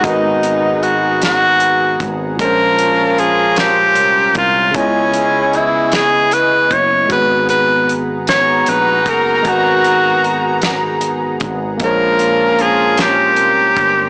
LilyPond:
<<
  \new Staff \with { instrumentName = "Analog synth pad" } { \time 6/8 \key gis \minor \tempo 4. = 51 <b gis' fis'' ais''>2. | <cis' ais' ais'' bis''>2. | <b e' dis'' cis'''>2. | <gis' fis'' ais''>2.~ |
<gis' fis'' ais''>2. | <cis' ais' ais'' bis''>2. | }
  \new Staff \with { instrumentName = "Tenor saxophone" } { \time 6/8 \key gis \minor dis'4 fis'8 fis'4 r8 | ais'4 gis'8 g'4 eis'8 | cis'4 e'8 gis'8 b'8 cis''8 | b'8 b'8 r8 cis''8 b'8 ais'8 |
fis'4. r4. | ais'4 gis'8 g'4. | }
  \new Staff \with { instrumentName = "Tine electric piano" } { \time 6/8 \key gis \minor <gis fis' ais' b'>2. | <ais, gis cis' bis'>2. | <cis b e' dis''>2. | <gis b fis' gis'>2. |
<gis fis' ais' b'>2. | <gis ais bis' cis''>2. | }
  \new Staff \with { instrumentName = "Horn section" } { \time 6/8 \key gis \minor <dis b dis'>2~ <dis b dis'>8 r8 | <eis cis' eis'>2~ <eis cis' eis'>8 r8 | <gis e' gis'>2~ <gis e' gis'>8 r8 | r4. <dis' fis' ais''>4.~ |
<dis' fis' ais''>2~ <dis' fis' ais''>8 r8 | <eis cis' eis'>2~ <eis cis' eis'>8 r8 | }
  \new Staff \with { instrumentName = "Fretless electric bass" } { \clef bass \time 6/8 \key gis \minor gis,,2~ gis,,8 gis,,8 | ais,,2 bis,,8 bis,,8 | cis,2~ cis,8 fis,,8 | gis,,2 ais,,8 fis,,8 |
gis,,2~ gis,,8 gis,,8 | ais,,2 bis,,8 g,,8 | }
  \new DrumStaff \with { instrumentName = "Drums" } \drummode { \time 6/8 <hh bd>8 hh8 hh8 <hh sn>8 hh8 <hh bd>8 | <hh bd>8 hh8 hh8 <hh sn>8 hh8 <hh bd>8 | <hh bd>8 hh8 hh8 <hh sn>8 hh8 <hh bd>8 | <hh bd>8 hh8 hh8 <hh sn>8 hh8 <hh bd>8 |
<hh bd>8 hh8 hh8 <hh sn>8 hh8 <hh bd>8 | <hh bd>8 hh8 hh8 <hh sn>8 hh8 <hh bd>8 | }
>>